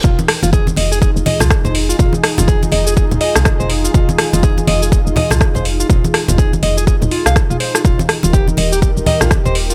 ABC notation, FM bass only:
X:1
M:4/4
L:1/16
Q:"Swing 16ths" 1/4=123
K:Fm
V:1 name="FM bass" clef=bass
F,,, z2 F,,,2 z F,,,2 z F,,, z C,, z F,,,2 z | F,,, z2 F,,,2 z F,,,2 z F,,, z C,, z F,,,2 z | F,,, z2 F,,,2 z F,,,2 z F,,, z C,, z F,,,2 z | F,,, z2 F,,,2 z F,,,2 z F,,, z C,, z F,,, z2 |
E,,, z2 E,,,2 z E,,,2 z E,,, z B,,, z E,,,2 z |]